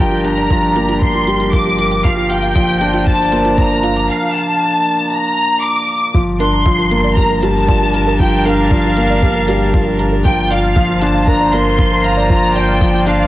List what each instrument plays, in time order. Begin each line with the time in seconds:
Already playing: sub bass G1, felt piano G3 A#3 D4 A#4, string quartet G3 D4 G4 A#4
0.00 felt piano F3, violin section G5
0.12 synth arpeggio sound F4
0.25 felt piano D4, synth arpeggio sound D5, violin section A#5, closed hi-hat
0.37 synth arpeggio sound D5, closed hi-hat
0.50 felt piano F3, synth arpeggio sound A#4, kick, closed hi-hat
0.76 felt piano A#3, synth arpeggio sound F4, closed hi-hat
0.89 synth arpeggio sound F4, closed hi-hat
1.02 felt piano A#3, violin section C6, kick, closed hi-hat
1.15 synth arpeggio sound F4
1.27 felt piano G3, closed hi-hat
1.40 synth arpeggio sound F4, closed hi-hat
1.53 felt piano F3, synth arpeggio sound A#4, violin section D6, kick, closed hi-hat
1.66 synth arpeggio sound G4
1.78 synth arpeggio sound F4, felt piano A#4, closed hi-hat
1.91 synth arpeggio sound G5, closed hi-hat
2.04 sub bass G1, felt piano F3, string quartet A#3, violin section F5, kick, closed hi-hat
2.17 synth arpeggio sound F4, string quartet F4
2.30 felt piano F4, synth arpeggio sound F5, violin section G5, closed hi-hat
2.43 synth arpeggio sound F5, closed hi-hat
2.55 felt piano F3, synth arpeggio sound D5, kick, closed hi-hat
2.67 string quartet C5
2.81 felt piano D4, synth arpeggio sound F4, string quartet D5, closed hi-hat
2.94 synth arpeggio sound F4, closed hi-hat
3.07 felt piano D4, synth arpeggio sound F4, violin section A5, kick, closed hi-hat
3.20 synth arpeggio sound F4
3.32 felt piano A#3, closed hi-hat
3.45 synth arpeggio sound F4, closed hi-hat
3.58 felt piano F3, synth arpeggio sound D5, violin section A#5, kick, closed hi-hat
3.71 synth arpeggio sound A#4
3.83 synth arpeggio sound F4, felt piano F5, closed hi-hat
3.96 synth arpeggio sound D6, closed hi-hat
4.09 violin section F5
4.35 violin section A5
5.12 violin section A#5
5.63 violin section D6
6.14 sub bass G1, felt piano F3, string quartet G3, synth arpeggio sound F4, kick
6.40 felt piano D4, synth arpeggio sound A#4, violin section C6, closed hi-hat
6.53 synth arpeggio sound A#5
6.65 felt piano F3, string quartet D4, synth arpeggio sound D5, kick
6.74 string quartet A#4
6.78 synth arpeggio sound F4
6.91 felt piano A#3, closed hi-hat
7.04 synth arpeggio sound D5
7.16 felt piano A#3, synth arpeggio sound G4, string quartet A5, violin section A#5, kick
7.30 synth arpeggio sound A#4
7.36 violin section A#5
7.43 felt piano G3, synth arpeggio sound A#4, violin section A5, closed hi-hat
7.69 felt piano F3, synth arpeggio sound D5, kick
7.81 synth arpeggio sound G4
7.94 felt piano A#4, synth arpeggio sound A#5, closed hi-hat
8.07 synth arpeggio sound A#4
8.20 felt piano F3, synth arpeggio sound F4, violin section G5, kick
8.46 felt piano D4, synth arpeggio sound A#4, violin section F5, closed hi-hat
8.58 synth arpeggio sound A#5
8.71 felt piano F3, synth arpeggio sound D5, kick
8.84 synth arpeggio sound F4
8.97 felt piano A#3, closed hi-hat
9.10 synth arpeggio sound D5
9.23 felt piano A#3, synth arpeggio sound G4, kick
9.35 synth arpeggio sound A#4
9.48 felt piano G3, synth arpeggio sound A#4, closed hi-hat
9.74 felt piano F3, synth arpeggio sound D5, kick
9.86 synth arpeggio sound G4
9.99 felt piano A#4, synth arpeggio sound A#5, closed hi-hat
10.12 synth arpeggio sound A#4
10.25 sub bass G1, felt piano F3, string quartet A#3, synth arpeggio sound F4, violin section G5, kick
10.33 string quartet F4
10.51 felt piano F4, synth arpeggio sound D5, violin section F5, closed hi-hat
10.64 synth arpeggio sound F6
10.76 felt piano F3, synth arpeggio sound F5, kick
10.89 synth arpeggio sound F4, string quartet C5
11.02 felt piano D4, violin section A5, closed hi-hat
11.14 synth arpeggio sound F5
11.27 felt piano D4, synth arpeggio sound A#4, violin section A#5, kick
11.41 synth arpeggio sound D5
11.53 felt piano A#3, synth arpeggio sound D5, violin section C6, closed hi-hat
11.79 felt piano F3, synth arpeggio sound F5, kick
11.92 synth arpeggio sound A#4
12.04 felt piano F5, violin section A#5, synth arpeggio sound F6, closed hi-hat
12.09 string quartet D5
12.17 synth arpeggio sound D5
12.30 felt piano F3, synth arpeggio sound F4, violin section A#5, kick
12.55 felt piano F4, synth arpeggio sound D5, violin section G5, closed hi-hat
12.69 synth arpeggio sound F6
12.81 felt piano F3, synth arpeggio sound F5, kick
12.94 synth arpeggio sound F4
13.07 felt piano D4, violin section F5, closed hi-hat
13.20 synth arpeggio sound F5